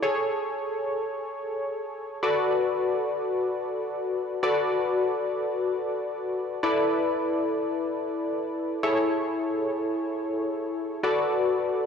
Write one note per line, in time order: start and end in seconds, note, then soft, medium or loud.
0.02 2.19 G#4 medium
0.02 2.19 A4 medium
0.02 2.19 C#5 medium
2.23 4.39 F#4 medium
2.23 4.39 A4 medium
2.23 4.39 B4 medium
2.23 4.39 D5 medium
4.43 6.59 F#4 medium
4.43 6.59 A4 medium
4.43 6.59 B4 medium
4.43 6.59 D5 medium
6.63 8.79 E4 medium
6.63 8.79 A4 medium
6.63 8.79 B4 medium
6.63 8.79 D5 medium
8.83 10.99 E4 medium
8.83 10.99 G#4 medium
8.83 10.99 A4 medium
8.83 10.99 C#5 medium
11.03 11.86 F#4 medium
11.03 11.86 A4 medium
11.03 11.86 B4 medium
11.03 11.86 D5 medium